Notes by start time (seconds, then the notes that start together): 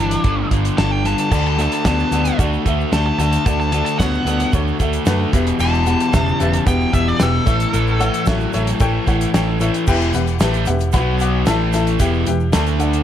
Already playing: D4
0.00 G1 G2 E3
0.11 closed hi-hat
0.24 G1 G2 D3, kick, closed hi-hat
0.51 G1 G2 D3, kick, closed hi-hat
0.65 closed hi-hat
0.77 G1 G2 D3 A5, snare, closed hi-hat
0.91 G5
1.05 G2 D3 A5, snare, closed hi-hat
1.18 A5, closed hi-hat
1.31 D2 D3 A3 F#4 A4 D5 A5, kick, crash, shaker
1.46 A5, shaker
1.58 D3 A3 F#4 A4 D5 A5, closed hi-hat, shaker
1.72 A5, closed hi-hat, shaker
1.85 D2 D3 B3 F#4 A4 D5 A5, kick, snare, closed hi-hat, shaker
1.99 shaker
2.11 D2 D3 B3 F#4 A4 D5, closed hi-hat, shaker
2.25 closed hi-hat, shaker
2.39 D2 D3 A3 F#4 A4 D5, kick, closed hi-hat, shaker
2.53 shaker
2.65 D2 D3 A3 F#4 A4 E5, kick, closed hi-hat, shaker
2.80 shaker
2.92 D2 D3 A3 F#4 A4 D5 A5, snare, closed hi-hat, shaker
3.06 A5
3.18 D2 D3 A3 F#4 A4 D5 A5, snare, closed hi-hat, shaker
3.32 A5, closed hi-hat, shaker
3.46 D2 D3 A3 F#4 A4 D5 A5, kick, closed hi-hat, shaker
3.60 A5, shaker
3.72 D3 A3 F#4 A4 D5 A5, closed hi-hat, shaker
3.85 A5, closed hi-hat, shaker
3.99 D2 D3 B3 F#4 A4 C#5 F#5, kick, snare, closed hi-hat, shaker
4.14 shaker
4.25 D2 D3 B3 F#4 A4 D5, closed hi-hat, shaker
4.40 closed hi-hat, shaker
4.53 D2 D3 A3 F#4 A4 C#5, kick, closed hi-hat, shaker
4.67 shaker
4.80 D2 D3 A3 F#4 A4 E5, kick, closed hi-hat, shaker
4.93 closed hi-hat, shaker
5.06 F#2 D3 A3 F#4 A4 B4, snare, closed hi-hat, shaker
5.33 E1 E2 B2 G4 B4 E5, kick, snare, closed hi-hat, shaker
5.47 closed hi-hat, shaker
5.59 E1 E2 B2 A5, crash, shaker
5.74 shaker
5.86 E2 B2 G4 B4 F#5, closed hi-hat, shaker
6.00 closed hi-hat, shaker
6.13 E1 E2 C#3 G4 B4 E5, kick, snare, closed hi-hat, shaker
6.28 shaker
6.40 E1 E2 C#3 G4 B4 E5, closed hi-hat, shaker
6.53 closed hi-hat
6.66 E1 E2 B2 G4 B4 F#5 G5, kick, closed hi-hat, shaker
6.81 shaker
6.93 E1 E2 B2 G4 B4 E5, kick, closed hi-hat, shaker
7.08 D5, shaker
7.19 E1 E2 B2 G4 A4 B4 G5, snare, closed hi-hat, shaker
7.46 A1 A2 E3 A4 C#5 E5, kick, snare, closed hi-hat, shaker
7.60 closed hi-hat, shaker
7.73 A1 A2 E3, closed hi-hat, shaker
7.88 shaker
7.99 A2 E3 A4 C#5 F#5, closed hi-hat, shaker
8.14 closed hi-hat, shaker
8.26 A1 A2 F#3 A4 C#5 E5, kick, snare, closed hi-hat, shaker
8.40 shaker
8.53 A1 A2 F#3 A4 C#5 E5, closed hi-hat, shaker
8.67 closed hi-hat, shaker
8.80 A1 A2 E3 A4 C#5 G5, kick, closed hi-hat, shaker
9.07 A1 A2 E3 A4 C#5 F#5, kick, closed hi-hat, shaker
9.21 closed hi-hat, shaker
9.34 A1 A2 E3 A4 C#5 G5, snare, closed hi-hat, shaker
9.60 A2 E3 A4 C#5 E5, closed hi-hat, shaker
9.74 closed hi-hat, shaker
9.87 E1 E2 B2 E3 G4 B4 E5 G5, kick, crash, shaker
10.00 closed hi-hat, shaker
10.13 E1 E2 B2 G4 B4 E5 F#5, closed hi-hat, shaker
10.27 closed hi-hat, shaker
10.40 A1 A2 E3 A3 G4 B4 E5 A5, snare, closed hi-hat, shaker
10.53 closed hi-hat, shaker
10.66 E1 E2 B2 G4 B4 E5 F#5, closed hi-hat, shaker
10.79 closed hi-hat, shaker
10.92 B1 B2 F#3 B3 F#4 B4 F#5 B5, kick, closed hi-hat, shaker
11.19 F#4 B4 F#5 D6, closed hi-hat, shaker
11.46 A1 A2 E3 A3 E4 A4 E5 A5, snare, closed hi-hat, shaker
11.73 E4 A4 E5 A5, snare, closed hi-hat, shaker
11.87 closed hi-hat, shaker
11.99 E1 E2 B2 E3 G4 B4 E5 G5, kick, closed hi-hat, shaker
12.13 shaker
12.26 E1 E2 B2 G4 B4 E5 G5, closed hi-hat, shaker
12.40 shaker
12.52 D2 D3 A3 D4 A4 D5 A5, snare, closed hi-hat, shaker
12.66 closed hi-hat, shaker
12.79 D4 A4 D5 F#5, closed hi-hat, shaker
12.93 closed hi-hat, shaker